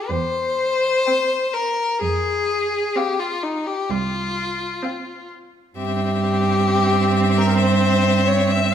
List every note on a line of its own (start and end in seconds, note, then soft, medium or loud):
0.08 0.89 E2 medium
0.08 1.55 C5 medium
1.06 1.79 C4 soft
1.06 1.79 G5 soft
1.54 2.01 A#4 medium
2.01 2.79 F2 medium
2.01 2.97 G#4 medium
2.96 3.66 C4 medium
2.96 3.21 G4 medium
2.96 3.67 F5 medium
3.19 3.44 F4 medium
3.43 3.68 D#4 medium
3.67 3.92 G4 medium
3.90 4.66 C2 medium
3.90 5.31 F4 medium
4.83 5.54 C4 medium
4.83 5.54 F5 medium
5.77 8.74 G2 medium
5.77 8.74 C4 medium
5.77 7.39 G4 medium
5.77 8.74 E5 medium
7.37 7.59 A#4 medium
7.59 8.28 C5 medium
8.27 8.52 C#5 medium
8.50 8.74 E5 medium